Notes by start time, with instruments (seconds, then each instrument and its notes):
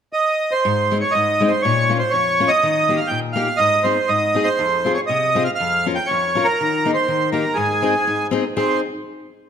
0.13 accordion D#5
0.51 accordion C5
0.65 steel-string acoustic guitar G#2
0.91 steel-string acoustic guitar G#3 C4 D#4
1.01 accordion C#5
1.11 accordion D#5
1.15 steel-string acoustic guitar G#2
1.40 steel-string acoustic guitar G#3 C4 D#4
1.48 accordion C5
1.62 steel-string acoustic guitar A#2, accordion C#5
1.89 steel-string acoustic guitar A#3 C#4 F4
1.99 accordion C5
2.11 steel-string acoustic guitar F2, accordion C#5
2.40 steel-string acoustic guitar A#3 C#4 F4
2.48 accordion D#5
2.63 steel-string acoustic guitar D#3
2.89 steel-string acoustic guitar A#3 D#4 G4
2.97 accordion F5
3.07 steel-string acoustic guitar A#2, accordion G5
3.33 steel-string acoustic guitar A#3 D#4, accordion F5
3.37 steel-string acoustic guitar G4
3.57 steel-string acoustic guitar G#2, accordion D#5
3.83 steel-string acoustic guitar C4 D#4 G#4, accordion C5
4.08 steel-string acoustic guitar G#2, accordion D#5
4.34 steel-string acoustic guitar C4 D#4 G#4
4.44 accordion C5
4.59 steel-string acoustic guitar F2
4.85 steel-string acoustic guitar C4 F4 G#4
4.94 accordion C#5
5.07 steel-string acoustic guitar C3, accordion D#5
5.35 steel-string acoustic guitar C4 F4 G#4
5.44 accordion F5
5.55 accordion F5
5.60 steel-string acoustic guitar F2
5.86 steel-string acoustic guitar C#4 F4 A#4
5.95 accordion G5
6.06 accordion C#5
6.11 steel-string acoustic guitar F2
6.35 steel-string acoustic guitar C#4 F4 A#4
6.45 accordion A#4
6.61 steel-string acoustic guitar D#3
6.85 steel-string acoustic guitar A#3 D#4 G#4
6.94 accordion C5
7.08 steel-string acoustic guitar D#3
7.32 steel-string acoustic guitar A#3 D#4 G4, accordion A#4
7.54 steel-string acoustic guitar G#2, accordion G#4
7.82 steel-string acoustic guitar C4 D#4 G#4
8.07 steel-string acoustic guitar G#2
8.31 steel-string acoustic guitar C4 D#4 G#4
8.57 steel-string acoustic guitar C4 D#4 G#4, accordion C5